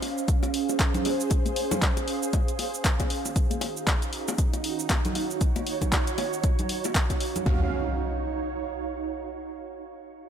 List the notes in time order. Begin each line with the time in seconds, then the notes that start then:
Already playing: C#4 G#4 C5 F5
0.02 open hi-hat, high bongo
0.18 shaker
0.28 kick, closed hi-hat, shaker
0.43 closed hi-hat, high bongo, shaker
0.54 open hi-hat
0.69 high bongo, shaker
0.79 kick, clap, closed hi-hat, shaker
0.94 closed hi-hat, low conga, shaker
1.05 open hi-hat, high bongo
1.20 shaker
1.30 kick, closed hi-hat, high bongo, shaker
1.45 closed hi-hat, high conga, shaker
1.56 open hi-hat
1.71 high bongo, low conga, shaker
1.82 kick, clap, closed hi-hat, shaker
1.97 closed hi-hat, high bongo, shaker
2.08 open hi-hat
2.23 shaker
2.33 kick, closed hi-hat, high bongo, shaker
2.48 closed hi-hat, shaker
2.59 open hi-hat, high bongo
2.74 shaker
2.85 kick, clap, closed hi-hat, shaker
3.00 kick, closed hi-hat, high bongo, shaker
3.10 D#3 D#4 F#4, open hi-hat
3.26 high bongo, shaker
3.36 F#4, kick, closed hi-hat, shaker
3.51 closed hi-hat, high conga, shaker
3.61 open hi-hat, high bongo
3.77 shaker
3.87 kick, clap, closed hi-hat, high bongo, shaker
4.02 closed hi-hat, shaker
4.13 open hi-hat
4.28 high bongo, shaker
4.36 C#5, kick, closed hi-hat, shaker
4.53 closed hi-hat, high bongo, shaker
4.64 open hi-hat
4.79 shaker
4.90 kick, clap, closed hi-hat, high bongo, shaker
5.05 closed hi-hat, low conga, shaker
5.15 open hi-hat, high bongo
5.31 shaker
5.41 kick, closed hi-hat, shaker
5.56 closed hi-hat, high bongo, high conga, shaker
5.67 open hi-hat
5.81 kick, closed hi-hat, high bongo, high conga, low conga, shaker
5.92 kick, clap, closed hi-hat, shaker
6.07 closed hi-hat, shaker
6.18 open hi-hat, high bongo
6.33 shaker
6.44 kick, closed hi-hat, high bongo, shaker
6.59 closed hi-hat, low conga, shaker
6.69 open hi-hat
6.84 closed hi-hat, high bongo, shaker
6.95 kick, clap, closed hi-hat, shaker
7.10 kick, closed hi-hat, high bongo, shaker
7.20 open hi-hat
7.36 closed hi-hat, low conga, shaker
7.46 D#2 C#4 D#4 F#4 F5, kick, impact
7.55 F#4
7.64 C#5
7.70 F5